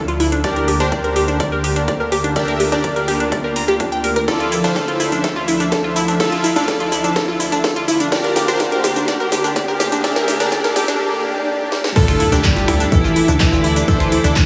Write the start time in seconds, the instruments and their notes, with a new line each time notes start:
Already playing: analog synth pad D2 D3 F3 E5, supersaw synth E4 F4 A4 D5, riser
0.08 synth arpeggio sound F4, closed hi-hat
0.20 synth arpeggio sound E4, open hi-hat
0.32 synth arpeggio sound D4, closed hi-hat
0.44 analog synth pad A#3 G4, supersaw synth D4 G4 A#4 D5, synth arpeggio sound D5, kick, closed hi-hat
0.56 synth arpeggio sound A#4, closed hi-hat
0.68 synth arpeggio sound G4, open hi-hat
0.80 synth arpeggio sound D4, supersaw synth D4 G4 A#4 C5, closed hi-hat
0.92 synth arpeggio sound D5, kick, closed hi-hat
1.04 synth arpeggio sound A#4, closed hi-hat
1.16 synth arpeggio sound G4, open hi-hat
1.28 synth arpeggio sound D4, closed hi-hat
1.40 synth arpeggio sound D5, kick, closed hi-hat
1.52 synth arpeggio sound A#4
1.64 synth arpeggio sound G4, open hi-hat
1.76 synth arpeggio sound D4, closed hi-hat
1.88 synth arpeggio sound D5, kick, closed hi-hat
2.00 synth arpeggio sound A#4
2.12 synth arpeggio sound G4, open hi-hat
2.24 synth arpeggio sound D4, closed hi-hat
2.36 supersaw synth D4 G4 A#4 E5, analog synth pad F4, synth arpeggio sound D5, kick, closed hi-hat
2.48 synth arpeggio sound A#4, closed hi-hat
2.60 synth arpeggio sound G4, open hi-hat
2.72 synth arpeggio sound D4, supersaw synth D4 G4 A#4 D5, closed hi-hat
2.84 synth arpeggio sound D5, kick, closed hi-hat
2.96 synth arpeggio sound A#4, closed hi-hat
3.08 synth arpeggio sound G4, open hi-hat
3.20 synth arpeggio sound D4, closed hi-hat
3.32 synth arpeggio sound D5, kick, closed hi-hat
3.44 synth arpeggio sound A#4
3.56 synth arpeggio sound A#5, open hi-hat
3.68 synth arpeggio sound G4, closed hi-hat
3.80 synth arpeggio sound D4, kick, closed hi-hat
3.92 synth arpeggio sound G5, closed hi-hat
4.04 synth arpeggio sound A#4, open hi-hat
4.16 synth arpeggio sound A#4, closed hi-hat
4.28 analog synth pad F3 E5, supersaw synth E4 F4 A4 D5, synth arpeggio sound A4, kick, snare, closed hi-hat, cabasa
4.40 synth arpeggio sound F4, closed hi-hat
4.52 synth arpeggio sound E4, open hi-hat, cabasa
4.64 synth arpeggio sound D4, supersaw synth E4 F4 A4 C5, closed hi-hat, cabasa
4.76 synth arpeggio sound A4, kick, snare, closed hi-hat, cabasa
4.88 synth arpeggio sound F4, closed hi-hat
5.00 synth arpeggio sound E4, open hi-hat, cabasa
5.12 synth arpeggio sound D4, closed hi-hat, cabasa
5.24 synth arpeggio sound A4, kick, snare, closed hi-hat, cabasa
5.36 synth arpeggio sound F4
5.48 synth arpeggio sound E4, open hi-hat, cabasa
5.60 synth arpeggio sound D4, closed hi-hat, cabasa
5.72 synth arpeggio sound A4, kick, snare, closed hi-hat, cabasa
5.84 synth arpeggio sound F4
5.96 synth arpeggio sound E4, open hi-hat, cabasa
6.08 synth arpeggio sound D4, closed hi-hat, cabasa
6.20 supersaw synth E4 F4 A4 E5, synth arpeggio sound A4, kick, snare, closed hi-hat, cabasa
6.32 synth arpeggio sound F4, closed hi-hat
6.44 synth arpeggio sound E4, open hi-hat, cabasa
6.56 synth arpeggio sound D4, supersaw synth E4 F4 A4 D5, closed hi-hat, cabasa
6.68 synth arpeggio sound A4, kick, snare, closed hi-hat, cabasa
6.80 synth arpeggio sound F4, closed hi-hat
6.92 synth arpeggio sound E4, open hi-hat, cabasa
7.04 synth arpeggio sound D4, closed hi-hat, cabasa
7.16 synth arpeggio sound A4, kick, snare, closed hi-hat, cabasa
7.28 synth arpeggio sound F4
7.40 synth arpeggio sound E4, open hi-hat, cabasa
7.52 synth arpeggio sound D4, closed hi-hat, cabasa
7.64 synth arpeggio sound A4, kick, snare, closed hi-hat, cabasa
7.76 synth arpeggio sound F4, closed hi-hat
7.88 synth arpeggio sound E4, open hi-hat, cabasa
8.00 synth arpeggio sound D4, closed hi-hat, cabasa
8.12 analog synth pad D2 D3 A#3 G4, supersaw synth D4 G4 A#4 D5, synth arpeggio sound D5, kick, snare, closed hi-hat, cabasa
8.24 synth arpeggio sound A#4, closed hi-hat
8.36 synth arpeggio sound G4, snare, open hi-hat, cabasa
8.48 synth arpeggio sound D4, supersaw synth D4 G4 A#4 C5, closed hi-hat, cabasa
8.60 synth arpeggio sound D5, kick, snare, closed hi-hat, cabasa
8.72 synth arpeggio sound A#4, closed hi-hat
8.84 synth arpeggio sound G4, snare, open hi-hat, cabasa
8.96 synth arpeggio sound D4, closed hi-hat, cabasa
9.08 synth arpeggio sound D5, kick, snare, closed hi-hat, cabasa
9.20 synth arpeggio sound A#4
9.32 synth arpeggio sound G4, snare, open hi-hat, cabasa
9.44 synth arpeggio sound D4, closed hi-hat, cabasa
9.56 synth arpeggio sound D5, kick, snare, closed hi-hat, cabasa
9.68 synth arpeggio sound A#4
9.80 synth arpeggio sound G4, snare, open hi-hat, cabasa
9.92 synth arpeggio sound D4, closed hi-hat, cabasa
10.04 supersaw synth D4 G4 A#4 E5, synth arpeggio sound D5, kick, snare, closed hi-hat, cabasa
10.16 synth arpeggio sound A#4, snare, closed hi-hat
10.28 synth arpeggio sound G4, snare, open hi-hat, cabasa
10.40 supersaw synth D4 G4 A#4 D5, synth arpeggio sound D4, snare, closed hi-hat, cabasa
10.52 synth arpeggio sound D5, kick, snare, closed hi-hat, cabasa
10.64 synth arpeggio sound A#4, snare, closed hi-hat
10.76 synth arpeggio sound G4, snare, open hi-hat, cabasa
10.88 synth arpeggio sound D4, snare, closed hi-hat, cabasa
11.00 swell
11.72 snare
11.84 snare
11.96 analog synth bass D2, grand piano A3 A4, supersaw synth D4 E4 F4 A4, violin section A4, synth arpeggio sound A4, analog synth pad A4 E5 D6, kick, closed hi-hat, crash, impact, cabasa
12.08 synth arpeggio sound F4, finger snap, closed hi-hat, cabasa
12.20 synth arpeggio sound E4, open hi-hat
12.32 analog synth bass D2, synth arpeggio sound D4, supersaw synth D4 E4 G4 A4, closed hi-hat, cabasa
12.44 grand piano G3 G4, violin section G4, synth arpeggio sound A4, kick, clap, closed hi-hat, cabasa
12.56 synth arpeggio sound F4, closed hi-hat, cabasa
12.68 analog synth bass D2, synth arpeggio sound E4, finger snap, open hi-hat
12.80 synth arpeggio sound D4, closed hi-hat, cabasa
12.92 analog synth bass A1, grand piano E3 E4, violin section E4, synth arpeggio sound A4, kick, closed hi-hat, cabasa
13.04 synth arpeggio sound F4, cabasa
13.16 synth arpeggio sound E4, open hi-hat
13.28 analog synth bass D2, synth arpeggio sound D4, closed hi-hat, cabasa
13.40 grand piano E3 E4, violin section E4, synth arpeggio sound A4, kick, clap, closed hi-hat, cabasa
13.52 analog synth bass D2, synth arpeggio sound F4, cabasa
13.64 synth arpeggio sound E4, open hi-hat
13.76 synth arpeggio sound D4, closed hi-hat, cabasa
13.88 analog synth bass D2, grand piano E3 E4, supersaw synth D4 E4 A4 C5, violin section E4, synth arpeggio sound A4, kick, closed hi-hat, cabasa
14.00 synth arpeggio sound F4, finger snap, closed hi-hat, cabasa
14.12 synth arpeggio sound E4, open hi-hat
14.24 analog synth bass D2, synth arpeggio sound D4, supersaw synth D4 E4 A4, closed hi-hat, cabasa
14.36 synth arpeggio sound A4, kick, clap, closed hi-hat, cabasa